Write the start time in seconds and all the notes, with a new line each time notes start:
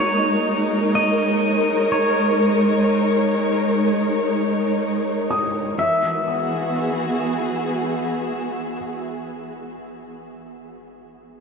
Already playing: G#3 A#3 D#4 F#4 A#4
0.00 C#5
0.88 C#5
0.95 D#5
1.92 C#5
5.31 D#6
5.78 E3 E5
5.95 B3
6.08 F#4
6.23 G#4